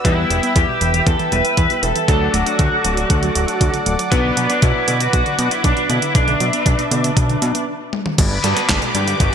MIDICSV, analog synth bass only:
0, 0, Header, 1, 2, 480
1, 0, Start_track
1, 0, Tempo, 508475
1, 46, Time_signature, 4, 2, 24, 8
1, 8825, End_track
2, 0, Start_track
2, 0, Title_t, "Analog synth bass"
2, 0, Program_c, 0, 38
2, 46, Note_on_c, 0, 40, 99
2, 236, Note_off_c, 0, 40, 0
2, 285, Note_on_c, 0, 28, 77
2, 381, Note_off_c, 0, 28, 0
2, 526, Note_on_c, 0, 40, 102
2, 621, Note_off_c, 0, 40, 0
2, 766, Note_on_c, 0, 28, 90
2, 956, Note_off_c, 0, 28, 0
2, 1006, Note_on_c, 0, 40, 91
2, 1101, Note_off_c, 0, 40, 0
2, 1247, Note_on_c, 0, 28, 100
2, 1342, Note_off_c, 0, 28, 0
2, 1486, Note_on_c, 0, 40, 101
2, 1581, Note_off_c, 0, 40, 0
2, 1726, Note_on_c, 0, 28, 94
2, 1821, Note_off_c, 0, 28, 0
2, 1967, Note_on_c, 0, 38, 102
2, 2157, Note_off_c, 0, 38, 0
2, 2206, Note_on_c, 0, 26, 80
2, 2301, Note_off_c, 0, 26, 0
2, 2447, Note_on_c, 0, 38, 102
2, 2542, Note_off_c, 0, 38, 0
2, 2689, Note_on_c, 0, 26, 89
2, 2877, Note_off_c, 0, 26, 0
2, 2927, Note_on_c, 0, 38, 80
2, 3116, Note_off_c, 0, 38, 0
2, 3168, Note_on_c, 0, 26, 84
2, 3262, Note_off_c, 0, 26, 0
2, 3407, Note_on_c, 0, 38, 90
2, 3501, Note_off_c, 0, 38, 0
2, 3647, Note_on_c, 0, 26, 89
2, 3742, Note_off_c, 0, 26, 0
2, 3886, Note_on_c, 0, 35, 100
2, 4076, Note_off_c, 0, 35, 0
2, 4126, Note_on_c, 0, 47, 80
2, 4221, Note_off_c, 0, 47, 0
2, 4366, Note_on_c, 0, 35, 106
2, 4461, Note_off_c, 0, 35, 0
2, 4605, Note_on_c, 0, 47, 91
2, 4796, Note_off_c, 0, 47, 0
2, 4847, Note_on_c, 0, 35, 89
2, 4941, Note_off_c, 0, 35, 0
2, 5085, Note_on_c, 0, 47, 101
2, 5181, Note_off_c, 0, 47, 0
2, 5326, Note_on_c, 0, 35, 100
2, 5421, Note_off_c, 0, 35, 0
2, 5566, Note_on_c, 0, 47, 94
2, 5661, Note_off_c, 0, 47, 0
2, 5806, Note_on_c, 0, 35, 105
2, 5996, Note_off_c, 0, 35, 0
2, 6045, Note_on_c, 0, 47, 80
2, 6141, Note_off_c, 0, 47, 0
2, 6286, Note_on_c, 0, 35, 101
2, 6381, Note_off_c, 0, 35, 0
2, 6525, Note_on_c, 0, 47, 88
2, 6716, Note_off_c, 0, 47, 0
2, 6765, Note_on_c, 0, 35, 83
2, 6956, Note_off_c, 0, 35, 0
2, 7004, Note_on_c, 0, 47, 109
2, 7100, Note_off_c, 0, 47, 0
2, 7725, Note_on_c, 0, 31, 108
2, 7916, Note_off_c, 0, 31, 0
2, 7966, Note_on_c, 0, 43, 80
2, 8061, Note_off_c, 0, 43, 0
2, 8206, Note_on_c, 0, 31, 106
2, 8301, Note_off_c, 0, 31, 0
2, 8446, Note_on_c, 0, 43, 94
2, 8636, Note_off_c, 0, 43, 0
2, 8686, Note_on_c, 0, 31, 100
2, 8781, Note_off_c, 0, 31, 0
2, 8825, End_track
0, 0, End_of_file